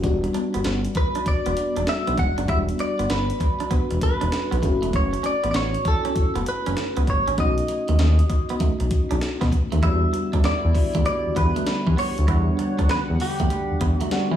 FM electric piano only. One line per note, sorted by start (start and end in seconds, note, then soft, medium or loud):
0.02 2.44 G3 medium
0.02 2.44 B3 medium
0.02 2.45 D4 medium
0.02 2.45 F#4 medium
2.48 4.58 G3 medium
2.48 4.59 B3 medium
2.48 4.59 D4 medium
2.48 4.59 F#4 medium
4.62 7.03 A3 medium
4.62 7.04 C#4 medium
4.62 7.04 E4 medium
4.62 7.04 F#4 medium
7.37 9.79 A3 medium
7.37 9.79 C#4 medium
7.37 9.79 D#4 medium
7.37 9.80 F#4 medium
9.82 12.23 G3 medium
9.82 12.24 B3 medium
9.82 12.24 D4 medium
9.82 12.25 F#4 medium
12.28 14.08 G3 medium
12.28 14.08 B3 medium
12.28 14.08 D4 medium
12.28 14.09 F#5 medium
14.11 14.37 G3 medium
14.11 14.37 B3 medium
14.11 14.37 D4 medium
14.11 14.37 F#5 medium